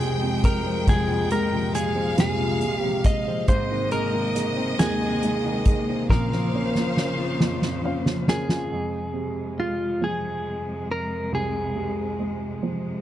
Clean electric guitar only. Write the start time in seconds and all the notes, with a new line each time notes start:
Already playing: G#4
0.45 A#4
0.89 G#4
1.32 A#4
1.75 G#4
2.20 G#4
2.80 G4
3.06 D#5
3.48 C5
3.92 A#4
4.79 G#4
6.10 A#4
8.29 G#4
9.60 F4
10.04 G#4
10.91 A#4
11.35 G#4